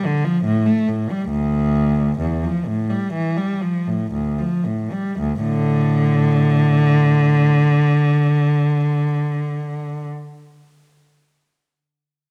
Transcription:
0.06 0.25 D3 medium
0.24 0.44 F3 medium
0.44 0.64 A2 medium
0.66 0.87 A3 medium
0.88 1.08 A2 medium
1.11 1.31 G3 medium
1.30 2.18 D2 medium
2.19 2.42 E2 medium
2.43 2.66 F3 soft
2.67 2.90 A2 soft
2.89 3.14 G3 medium
3.13 3.37 E3 medium
3.37 3.62 G3 soft
3.62 3.87 F3 soft
3.87 4.13 A2 soft
4.12 4.38 D2 soft
4.38 4.65 F3 soft
4.66 4.92 A2 soft
4.92 5.18 G3 soft
5.19 5.42 D2 medium
5.42 7.43 A2 medium
5.42 10.07 D3 medium

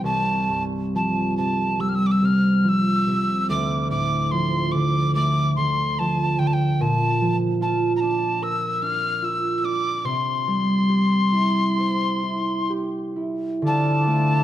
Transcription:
0.04 3.56 C2 soft
0.04 0.63 A5 medium
0.49 1.44 G2 soft
0.95 1.44 F3 soft
0.95 1.36 A5 medium
1.37 2.21 C3 soft
1.37 1.82 A5 medium
1.79 3.56 G3 soft
1.79 1.90 E6 medium
1.89 1.96 F6 soft
1.95 2.08 E6 medium
2.06 2.13 D6 soft
2.11 2.26 E6 medium
2.22 3.06 C3 soft
2.22 2.70 F6 medium
2.64 3.14 F3 soft
2.68 3.49 E6 medium
3.07 3.56 C3 soft
3.49 6.86 D2 medium
3.49 3.88 D6 medium
3.90 4.80 A2 soft
3.90 4.33 D6 medium
4.31 4.80 F3 soft
4.31 4.73 C6 medium
4.72 5.57 D3 soft
4.72 5.14 D6 medium
5.15 6.86 A3 soft
5.15 5.54 D6 medium
5.56 6.38 D3 soft
5.56 6.00 C6 medium
5.99 6.46 F3 soft
5.99 6.40 A5 medium
6.39 6.86 D3 medium
6.39 6.48 G5 medium
6.47 6.55 A5 medium
6.53 6.83 G5 medium
6.80 10.10 A#2 medium
6.80 7.36 A5 medium
7.21 10.10 F3 soft
7.61 9.22 F4 medium
7.61 7.93 A5 medium
7.96 8.02 A#5 medium
8.00 8.81 D4 medium
8.00 8.44 A5 medium
8.42 10.54 A#4 soft
8.42 8.84 E6 medium
8.82 9.63 D4 soft
8.82 9.26 F6 medium
9.22 11.38 F4 soft
9.22 9.58 E6 medium
9.58 9.66 E6 medium
9.63 12.43 D4 soft
9.63 10.07 D6 medium
10.04 13.70 C3 medium
10.04 12.72 C6 medium
10.47 13.70 G3 soft
10.89 12.69 G4 soft
11.32 12.23 E4 soft
11.78 13.76 C5 soft
12.23 13.16 E4 soft
12.70 14.44 G4 soft
13.16 14.44 E4 soft
13.62 14.44 D3 medium
13.62 14.44 F3 medium
13.62 14.44 D4 medium
13.62 14.44 A4 medium
13.67 14.44 A5 medium
14.07 14.44 A3 soft

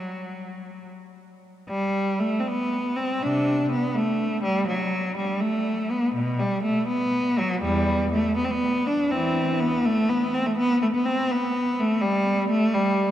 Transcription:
0.00 0.88 F#3 soft
1.69 2.17 G3 medium
2.20 2.38 A3 medium
2.40 2.46 C4 medium
2.48 2.96 B3 medium
2.96 3.20 C4 medium
3.22 3.67 C3 medium
3.22 3.71 D4 medium
3.71 3.95 B3 medium
3.95 4.44 A3 medium
4.43 4.67 G3 medium
4.67 5.16 F#3 medium
5.17 5.42 G3 medium
5.41 5.91 A3 medium
5.91 6.16 B3 medium
6.15 6.40 B2 medium
6.39 6.65 G3 medium
6.63 6.88 A3 medium
6.88 7.37 B3 medium
7.38 7.63 F#3 medium
7.62 8.09 E2 medium
7.62 8.11 G3 medium
8.12 8.37 A3 medium
8.36 8.43 B3 medium
8.44 8.51 C4 medium
8.51 8.86 B3 medium
8.86 9.11 D4 medium
9.11 9.56 E3 medium
9.11 9.59 C4 medium
9.60 9.84 B3 medium
9.85 10.09 A3 medium
10.09 10.33 B3 medium
10.34 10.45 C4 medium
10.46 10.57 A3 medium
10.58 10.80 B3 medium
10.82 10.87 A3 medium
10.94 11.05 B3 medium
11.05 11.29 C4 medium
11.31 11.78 B3 medium
11.80 12.02 A3 medium
12.01 12.49 G3 medium
12.50 12.73 A3 medium
12.74 13.11 G3 medium

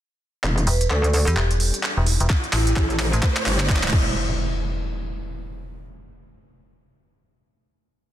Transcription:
0.43 0.65 E1 loud
0.43 2.28 G3 medium
0.43 3.89 E4 medium
0.43 2.28 D5 medium
0.43 clap soft
0.43 riser medium
0.58 closed hi-hat soft
0.67 0.89 E1 medium
0.67 0.79 B4 medium
0.67 open hi-hat loud
0.81 closed hi-hat medium
0.90 1.25 D2 medium
0.90 1.25 A4 medium
0.90 clap soft
1.04 closed hi-hat medium
1.13 open hi-hat medium
1.27 1.35 E2 medium
1.27 1.36 G4 medium
1.27 closed hi-hat medium
1.37 1.72 E1 loud
1.37 clap medium
1.51 closed hi-hat medium
1.60 open hi-hat loud
1.74 closed hi-hat medium
1.83 clap medium
1.97 2.18 E1 loud
2.06 open hi-hat medium
2.20 2.28 E1 loud
2.20 closed hi-hat medium
2.30 3.91 A3 medium
2.30 3.91 C5 loud
2.30 kick loud
2.30 clap medium
2.44 closed hi-hat soft
2.53 2.75 A1 medium
2.53 2.99 E4 medium
2.53 clap medium
2.53 open hi-hat loud
2.67 closed hi-hat medium
2.76 3.11 A1 loud
2.76 kick loud
2.76 clap medium
2.90 closed hi-hat medium
2.99 clap medium
2.99 open hi-hat loud
3.13 3.21 A1 loud
3.13 closed hi-hat medium
3.23 kick loud
3.23 clap medium
3.37 clap medium
3.37 closed hi-hat medium
3.46 3.91 G1 loud
3.46 clap loud
3.46 open hi-hat loud
3.60 clap medium
3.60 closed hi-hat medium
3.69 kick loud
3.69 clap loud
3.76 clap medium
3.83 clap medium
3.88 clap loud
3.93 4.14 E1 loud
3.93 kick loud
3.93 crash medium
3.93 impact medium

